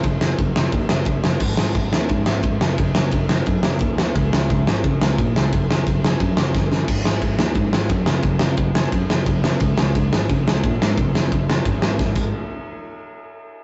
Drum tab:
CC |--------|x-------|--------|--------|
RD |x-x-x-x-|--x-x-x-|x-x-x-x-|x-x-x-x-|
SD |-o-o-o-o|-o-o-o-o|-o-o-o-o|-o-o-o-o|
BD |o-o-o-o-|o-o-o-o-|o-o-o-o-|o-o-o-o-|

CC |--------|x-------|--------|--------|
RD |x-x-x---|--x-x-x-|x-x-x-x-|x-x-x-x-|
SD |-o-o-ooo|-o-o-o-o|-o-o-o-o|-o-o-o-o|
BD |o-o-o-o-|o-o-o-o-|o-o-o-o-|o-o-o-o-|

CC |-------x|--------|
RD |x-x-x---|--------|
SD |-o-o-oo-|--------|
BD |o-o-o-oo|--------|